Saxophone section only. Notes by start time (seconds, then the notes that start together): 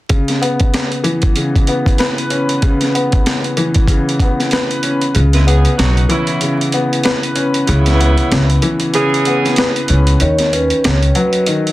5.34 G#3 E4 B4
5.47 E3 C#4 G#4
5.78 F#3 D#4 F#4
6.10 C#3 B3 E4
7.66 C#3 B3 E4
8.95 E3 C#4 G#4